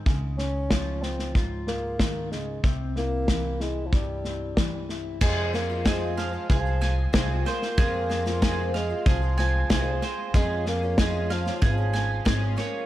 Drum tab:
CC |----------------|----------------|x---------------|----------------|
SD |o-o-o-ooo-o-o-o-|o-o-o-o-o-o-o-o-|o-o-o-o-o-o-o-oo|o-ooo-o-o-o-o-o-|
BD |o---o---o---o---|o---o---o---o---|o---o---o---o---|o---o---o---o---|

CC |----------------|
SD |o-o-o-ooo-o-o-o-|
BD |o---o---o---o---|